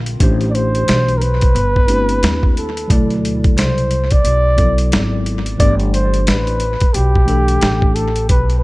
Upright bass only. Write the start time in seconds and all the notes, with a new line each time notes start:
Already playing: A#1
0.21 A1
0.88 B1
1.55 G1
2.22 D#2
2.91 D2
3.57 C2
4.24 B1
4.92 G#1
5.60 G1
6.27 A1
6.82 muted upright bass stroke
6.94 B1
7.62 A1
8.30 B1